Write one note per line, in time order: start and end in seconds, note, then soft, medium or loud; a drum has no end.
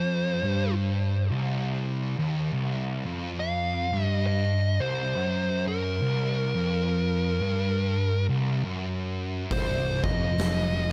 0.00 0.42 F2 loud
0.00 0.73 C5 medium
0.45 1.30 G2 loud
1.32 2.17 C2 loud
2.19 2.52 D#2 loud
2.53 3.04 C2 loud
3.06 3.91 F2 loud
3.40 4.05 F5 loud
3.93 4.79 G2 loud
4.05 4.26 D#5 loud
4.27 4.81 D#5 loud
4.80 5.14 C2 medium
4.80 5.63 C5 loud
5.15 6.01 F#2 loud
5.68 8.25 A#4 medium
6.02 6.53 C2 loud
6.55 7.40 F2 loud
7.42 8.27 G2 loud
8.29 8.63 C2 medium
8.64 9.50 F#2 loud
9.51 10.00 C1 medium
9.51 10.02 C2 loud
9.51 10.00 C5 loud
9.51 kick loud
9.51 open hi-hat medium
10.04 10.87 F1 loud
10.04 10.90 F2 loud
10.04 10.90 D#5 loud
10.04 kick loud
10.38 snare loud
10.38 open hi-hat medium